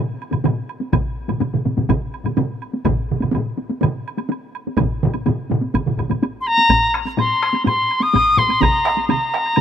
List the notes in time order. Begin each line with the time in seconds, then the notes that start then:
0.22 high woodblock
0.31 taiko low-mid, taiko mid, taiko high, high woodblock
0.44 taiko low-mid, taiko mid, taiko high, high woodblock
0.69 high woodblock
0.80 taiko high
0.93 taiko, taiko low-mid, taiko mid, taiko high, high woodblock
1.28 taiko low-mid, taiko mid, taiko high, high woodblock
1.40 taiko low-mid, taiko mid, taiko high, high woodblock
1.54 taiko low-mid, taiko mid
1.65 taiko low-mid, taiko mid, taiko high
1.77 taiko low-mid, taiko mid, taiko high
1.89 taiko, taiko low-mid, taiko mid, taiko high, high woodblock
2.14 high woodblock
2.25 taiko low-mid, taiko mid, taiko high, high woodblock
2.37 taiko low-mid, taiko mid, taiko high, high woodblock
2.62 high woodblock
2.73 taiko high
2.85 taiko, taiko low-mid, taiko mid, taiko high, high woodblock
3.11 taiko low-mid, taiko mid
3.20 taiko low-mid, taiko mid, taiko high, high woodblock
3.33 taiko low-mid, taiko mid, taiko high, high woodblock
3.57 taiko high
3.69 taiko high
3.81 taiko low-mid, taiko mid, taiko high, high woodblock
4.08 high woodblock
4.17 taiko high, high woodblock
4.29 taiko high, high woodblock
4.55 high woodblock
4.67 taiko high
4.77 taiko, taiko low-mid, taiko mid, taiko high, high woodblock
5.03 taiko low-mid, taiko mid
5.14 taiko high, high woodblock
5.26 taiko low-mid, taiko mid, taiko high, high woodblock
5.51 taiko low-mid, taiko mid, taiko high
5.62 taiko high
5.74 taiko, taiko low-mid, taiko mid, taiko high, high woodblock
5.86 taiko low-mid, taiko mid
5.97 taiko, taiko low-mid, taiko mid, high woodblock
6.10 taiko low-mid, taiko mid, taiko high, high woodblock
6.22 taiko high, high woodblock
6.41 C6
6.47 A#5, high woodblock
6.58 taiko high
6.69 taiko, taiko low-mid, taiko high, high woodblock
6.94 taiko rim, high woodblock
7.05 taiko high, high woodblock
7.17 C6, taiko low-mid, taiko high, high woodblock
7.42 taiko rim, high woodblock
7.53 taiko high, high woodblock
7.65 C6, taiko low-mid, taiko high, high woodblock
7.91 high woodblock
8.01 D#6, taiko high, high woodblock
8.13 taiko, taiko low-mid, taiko high, high woodblock
8.37 C6, taiko low-mid, high woodblock
8.49 taiko high, high woodblock
8.61 A#5, taiko, taiko mid, taiko high, high woodblock
8.85 taiko rim, high woodblock
8.97 taiko high
9.08 A#5, taiko mid, taiko high, high woodblock
9.34 taiko rim, high woodblock
9.46 high woodblock
9.56 taiko mid, taiko high, high woodblock